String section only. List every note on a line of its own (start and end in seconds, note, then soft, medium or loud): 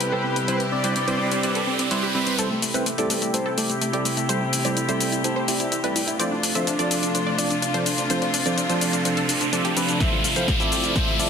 0.00 2.35 C3 medium
0.00 2.35 G3 medium
0.00 2.35 E4 medium
0.00 2.35 G4 medium
2.39 6.16 C3 medium
2.39 11.30 A3 medium
2.39 6.16 E4 medium
2.39 6.16 G4 medium
6.20 11.30 C3 medium
6.20 8.08 D4 medium
6.20 9.97 F4 medium
8.10 9.99 C4 medium
10.00 11.30 F3 medium
10.00 11.30 E4 medium